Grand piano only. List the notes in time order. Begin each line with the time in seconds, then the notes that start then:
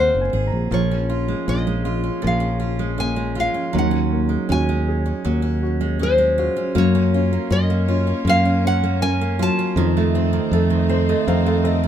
Already playing: C3 A#3 C4 G#4 C#5 D#5 F#5
0.21 G#5
0.47 A#5
0.71 A#3
1.10 F4
1.47 A#3
1.84 F4
2.23 A#3
2.62 F4
2.99 A#3
3.38 F4
3.75 D#3
4.13 A#3
4.50 F#4
4.88 G#4
5.25 A#3
5.63 F#4
6.02 G#4
6.38 F#4
6.76 F#3
7.14 C#4
7.52 A#4
7.88 C#4
8.26 A#4
8.64 C#4
9.02 A#4
9.39 F#3
9.77 F3
10.14 C4
10.53 A4
10.90 C5
11.10 D#5
11.28 C4 F5
11.46 F5
11.64 A4 D#5